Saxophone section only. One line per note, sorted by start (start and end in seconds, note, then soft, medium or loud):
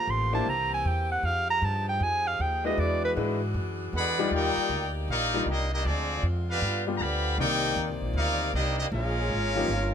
0.00 0.46 F3 medium
0.00 0.46 A3 medium
0.00 1.22 A#3 medium
0.00 2.74 G4 medium
0.47 1.23 E3 medium
0.47 1.23 C4 medium
1.25 2.77 F3 medium
1.25 2.77 D#4 medium
1.25 4.29 G#4 medium
2.78 4.30 E3 medium
2.78 4.30 D4 medium
2.78 4.30 F#4 medium
4.31 5.68 A#3 medium
4.31 5.68 D#4 medium
4.31 5.68 G4 medium
4.31 5.68 D5 medium
5.85 7.37 D3 medium
5.85 6.62 G#3 medium
5.85 6.62 C4 medium
5.85 7.38 F4 medium
6.62 7.38 G3 medium
6.62 7.38 B3 medium
7.38 8.91 C3 medium
7.38 8.90 A#3 medium
7.38 8.91 D#4 medium
7.38 8.91 D5 medium
8.93 9.69 C#3 medium
8.93 9.69 G#3 medium
8.93 9.94 A#3 medium
8.93 9.69 F4 medium
9.68 9.94 D#3 medium
9.68 9.94 C#4 medium
9.68 9.94 A#4 medium